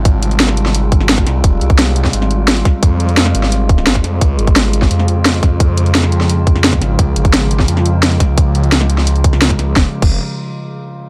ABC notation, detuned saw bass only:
X:1
M:4/4
L:1/16
Q:1/4=173
K:Fm
V:1 name="Detuned saw bass" clef=bass
A,,,12- A,,,2 C,,2 | F,,,2 C,,6 A,,,6 z2 | F,,6 A,,,6 G,,,2 F,,2 | D,,2 A,,,6 F,,6 F,,2- |
F,,12- F,,2 A,,,2 | D,,2 A,,,6 F,,6 D,,2- | D,,12- D,,2 D,,2 | F,,, z2 F,,,2 z8 z3 |]